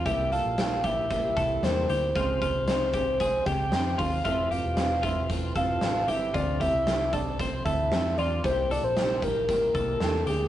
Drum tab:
HH |xxxxxxxx|xxxxxxxo|xxxxxxxx|xxxxxxxx|
SD |--o---o-|--o--oo-|--o--oo-|--o---o-|
BD |o--ooo--|oo-ooo-o|o--ooo--|oo-ooo--|

HH |xxxxxxxx|
SD |--o---o-|
BD |o--ooo--|